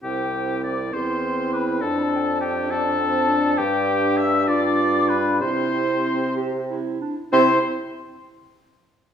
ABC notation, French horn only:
X:1
M:6/8
L:1/8
Q:3/8=66
K:C
V:1 name="French horn"
C3 C3 | D3 D C D | D6 | C4- C z |
C z4 z |]